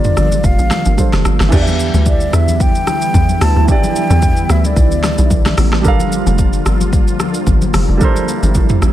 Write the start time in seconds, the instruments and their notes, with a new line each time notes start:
Already playing: log drum bass G1, analog synth pad D3 F3 G3 A#3 F4, grand piano G3 D4 F4 A4 A#4, flute D5
0.04 mid tom, shaker
0.17 log drum bass G1, cross-stick, shaker
0.32 high conga, shaker
0.44 log drum bass F1, flute F5, kick, shaker
0.59 log drum bass A1, shaker
0.71 cross-stick, snare, high conga, shaker
0.85 log drum bass G1, shaker
0.97 grand piano G3 D4 F4 A4 C5, kick, high conga, shaker
1.13 log drum bass F1, cross-stick, snare, high conga, shaker
1.25 log drum bass G1, cross-stick, low conga, shaker
1.40 log drum bass G1, cross-stick, snare, high conga, shaker
1.49 log drum bass E2, analog synth pad D3 E3 G3 B3 E4, grand piano E3 D4 E4, kick, crash, low conga, shaker
1.54 grand piano G4 D5
1.62 grand piano E5
1.67 high conga, shaker
1.80 shaker
1.94 log drum bass D2, high conga, shaker
2.06 flute D5, kick, shaker
2.20 shaker
2.33 log drum bass E2, flute E5, cross-stick, shaker
2.48 high conga, shaker
2.60 flute G5, kick, shaker
2.75 shaker
2.87 cross-stick, high conga, shaker
3.02 shaker
3.14 log drum bass E2, kick, high conga, shaker
3.29 high conga, shaker
3.41 log drum bass D2, flute A5, cross-stick, open hi-hat, low conga, shaker
3.56 log drum bass D2
3.65 grand piano E3 D4 E4, kick, low conga, shaker
3.70 grand piano G4 D5, flute G5
3.83 high conga, shaker
3.96 shaker
4.10 log drum bass E2, high conga, shaker
4.22 kick, shaker
4.37 shaker
4.49 log drum bass D2, flute E5, cross-stick, shaker
4.64 flute D5, high conga, shaker
4.76 log drum bass B1, kick, shaker
4.91 log drum bass D2, shaker
5.04 cross-stick, snare, high conga, shaker
5.18 log drum bass B1, shaker
5.31 kick, high conga, shaker
5.45 cross-stick, snare, high conga, shaker
5.58 log drum bass A1, cross-stick, open hi-hat, low conga, shaker
5.73 cross-stick, snare
5.81 log drum bass G1, analog synth pad F3 A#3 F4, grand piano G3 D4 A4, kick, low conga, shaker
5.86 grand piano A#4 F5
6.00 high conga, shaker
6.12 shaker
6.27 log drum bass F1, high conga, shaker
6.38 kick, shaker
6.53 shaker
6.66 log drum bass G1, cross-stick, shaker
6.81 high conga, shaker
6.93 kick, shaker
7.08 shaker
7.20 cross-stick, high conga, shaker
7.34 shaker
7.47 log drum bass G1, kick, high conga, shaker
7.62 high conga, shaker
7.74 log drum bass F1, cross-stick, open hi-hat, low conga, shaker
7.89 log drum bass F1
7.97 grand piano G3 D4 A4, analog synth pad E4, kick, low conga, shaker
8.03 grand piano A#4 C5
8.16 high conga, shaker
8.28 shaker
8.43 log drum bass G1, high conga, shaker
8.55 kick, low conga, shaker
8.69 mid tom, shaker
8.82 log drum bass A1, cross-stick, shaker